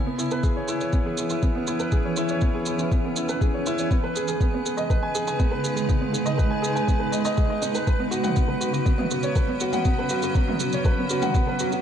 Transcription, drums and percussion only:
0.19 shaker medium
0.31 shaker soft
0.43 kick loud
0.43 shaker soft
0.68 shaker medium
0.81 shaker soft
0.93 kick medium
0.93 shaker soft
1.17 shaker medium
1.30 shaker soft
1.42 kick medium
1.42 shaker soft
1.67 shaker medium
1.79 shaker soft
1.92 kick loud
1.92 shaker soft
2.16 shaker medium
2.29 shaker soft
2.41 kick medium
2.41 shaker soft
2.66 shaker medium
2.79 shaker soft
2.92 kick medium
2.92 shaker soft
3.16 shaker medium
3.29 shaker soft
3.41 kick loud
3.41 shaker soft
3.66 shaker medium
3.78 shaker soft
3.91 kick loud
3.91 shaker soft
4.16 shaker medium
4.28 shaker soft
4.41 kick loud
4.41 shaker soft
4.66 shaker medium
4.78 shaker soft
4.90 kick loud
4.90 shaker soft
5.15 shaker medium
5.27 shaker soft
5.39 kick loud
5.39 shaker soft
5.64 shaker medium
5.77 shaker soft
5.89 kick loud
5.89 shaker soft
6.14 shaker medium
6.26 shaker soft
6.39 kick loud
6.39 shaker soft
6.64 shaker medium
6.76 shaker soft
6.88 kick loud
6.88 shaker soft
7.13 shaker medium
7.25 shaker soft
7.37 kick loud
7.37 shaker soft
7.62 shaker medium
7.75 shaker soft
7.87 kick loud
7.87 shaker soft
8.12 shaker medium
8.24 mid tom medium
8.24 shaker soft
8.36 kick loud
8.36 shaker soft
8.61 shaker medium
8.74 shaker soft
8.86 kick loud
8.86 shaker soft
8.98 mid tom medium
9.11 shaker medium
9.23 shaker soft
9.35 kick loud
9.35 shaker soft
9.60 shaker medium
9.73 mid tom medium
9.73 shaker soft
9.85 kick loud
9.85 shaker soft
10.09 shaker medium
10.22 shaker soft
10.35 kick medium
10.35 shaker soft
10.47 mid tom medium
10.60 shaker medium
10.72 shaker soft
10.85 kick loud
10.85 shaker soft
11.09 shaker medium
11.22 mid tom medium
11.22 shaker soft
11.35 kick loud
11.35 shaker soft
11.59 shaker medium
11.72 shaker soft

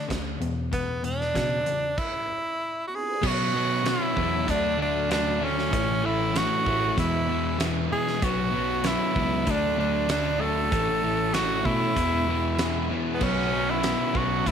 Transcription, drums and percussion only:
0.10 kick medium
0.10 snare loud
0.10 closed hi-hat medium
0.42 closed hi-hat soft
0.73 kick medium
0.73 closed hi-hat medium
1.04 closed hi-hat soft
1.21 snare soft
1.35 kick medium
1.35 snare loud
1.35 closed hi-hat medium
1.66 closed hi-hat medium
1.98 kick medium
1.98 crash medium
3.23 kick loud
3.23 crash loud
3.86 snare medium
3.86 closed hi-hat medium
4.17 kick medium
4.48 kick medium
4.48 closed hi-hat medium
5.11 snare loud
5.11 closed hi-hat medium
5.59 snare soft
5.73 kick loud
5.73 closed hi-hat medium
6.36 snare loud
6.36 closed hi-hat medium
6.66 kick medium
6.98 kick medium
6.98 closed hi-hat medium
7.60 snare loud
7.60 closed hi-hat medium
8.07 snare soft
8.22 kick loud
8.22 closed hi-hat medium
8.84 snare loud
8.84 closed hi-hat medium
9.16 kick medium
9.47 kick medium
9.47 closed hi-hat medium
10.09 snare loud
10.09 closed hi-hat medium
10.72 kick loud
10.72 closed hi-hat medium
11.34 snare loud
11.34 closed hi-hat medium
11.65 kick medium
11.97 kick medium
11.97 closed hi-hat medium
12.59 snare loud
12.59 closed hi-hat medium
13.21 kick loud
13.21 crash medium
13.83 snare loud
13.83 closed hi-hat medium
14.15 kick medium
14.46 kick medium
14.46 closed hi-hat medium

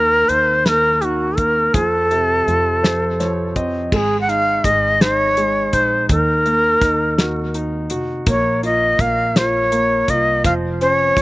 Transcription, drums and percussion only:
0.29 closed hi-hat soft
0.66 snare medium
0.66 closed hi-hat medium
1.02 closed hi-hat soft
1.37 kick medium
1.37 closed hi-hat soft
1.74 kick medium
1.74 closed hi-hat medium
2.11 closed hi-hat soft
2.48 closed hi-hat soft
2.84 snare medium
2.84 closed hi-hat medium
3.20 snare soft
3.20 closed hi-hat medium
3.56 kick medium
3.56 closed hi-hat soft
3.92 kick medium
3.92 crash medium
4.29 closed hi-hat soft
4.64 kick medium
4.64 closed hi-hat medium
5.01 snare medium
5.01 closed hi-hat medium
5.37 closed hi-hat medium
5.73 kick medium
5.73 closed hi-hat medium
6.09 kick loud
6.09 closed hi-hat medium
6.46 closed hi-hat soft
6.82 kick medium
6.82 snare soft
6.82 closed hi-hat medium
7.18 snare medium
7.18 closed hi-hat medium
7.54 closed hi-hat soft
7.90 closed hi-hat medium
8.26 kick loud
8.26 closed hi-hat medium
8.63 closed hi-hat soft
8.99 kick medium
8.99 closed hi-hat medium
9.36 snare medium
9.36 closed hi-hat medium
9.72 closed hi-hat soft
10.08 kick medium
10.08 closed hi-hat medium
10.44 kick loud
10.44 closed hi-hat medium
10.81 closed hi-hat soft
11.17 kick medium
11.17 snare soft
11.17 closed hi-hat medium

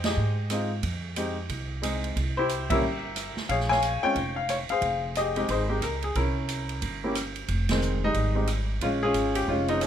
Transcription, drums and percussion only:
0.04 snare medium
0.04 ride medium
0.50 cross-stick medium
0.50 hi-hat pedal medium
0.50 ride medium
0.83 kick soft
0.83 ride medium
1.16 hi-hat pedal medium
1.16 ride medium
1.49 kick soft
1.49 ride soft
1.83 cross-stick medium
1.83 hi-hat pedal soft
1.83 ride medium
2.04 ride soft
2.17 kick soft
2.17 ride medium
2.49 hi-hat pedal medium
2.49 ride medium
2.70 kick medium
2.70 ride medium
3.16 cross-stick medium
3.16 hi-hat pedal medium
3.16 ride medium
3.37 snare soft
3.49 kick soft
3.49 ride medium
3.60 snare soft
3.71 snare soft
3.82 hi-hat pedal soft
3.82 ride medium
4.16 kick soft
4.16 ride medium
4.49 cross-stick medium
4.49 hi-hat pedal medium
4.49 ride medium
4.69 ride soft
4.82 kick soft
4.82 ride medium
5.15 hi-hat pedal medium
5.15 ride medium
5.36 ride soft
5.49 kick soft
5.49 ride medium
5.82 cross-stick medium
5.82 hi-hat pedal soft
5.82 ride medium
6.02 ride soft
6.15 kick soft
6.15 ride medium
6.49 hi-hat pedal medium
6.49 ride medium
6.69 ride soft
6.82 kick soft
6.82 ride medium
7.15 cross-stick medium
7.15 hi-hat pedal medium
7.15 ride medium
7.36 ride soft
7.48 kick soft
7.48 ride medium
7.69 snare medium
7.69 ride medium
7.82 hi-hat pedal soft
8.14 kick soft
8.14 ride medium
8.47 cross-stick medium
8.47 hi-hat pedal medium
8.47 ride medium
8.81 kick soft
8.81 ride medium
9.14 hi-hat pedal soft
9.14 ride medium
9.35 ride medium
9.48 kick soft
9.68 ride soft
9.81 cross-stick medium
9.81 hi-hat pedal medium
9.81 ride medium

